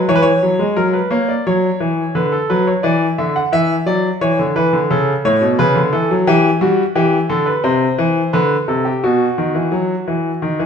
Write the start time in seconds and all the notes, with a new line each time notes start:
0.09 E3 C#5
0.16 B4
0.22 C#5
0.43 F#3
0.59 G#3
0.76 F#3 A#4
0.93 B4
1.11 A#3 C#5
1.28 D5
1.47 F#3 C#5
1.80 E3
2.15 D3 B4
2.32 A4
2.50 F#3 B4
2.67 C#5
2.83 E3 D5
3.18 D3 E5
3.36 F#5
3.52 E3 E5
3.86 F#3 D5
4.21 E3 C#5
4.39 D3
4.56 E3 B4
4.73 D3
4.90 C#3 A4
5.25 A2 C#5
5.41 B2
5.59 C#3 B4
5.76 D3
5.93 E3 A4
6.11 F#3
6.27 E3 G4
6.61 G3 F#4
6.95 E3 G4
7.29 D3 A4
7.46 B4
7.64 C3 C5
7.98 E3
8.33 D3 B4
8.68 C3 A4
8.85 G4
9.04 B2 F#4
9.38 D#3
9.55 E3
9.72 F#3
10.08 E3
10.42 D#3
10.59 E3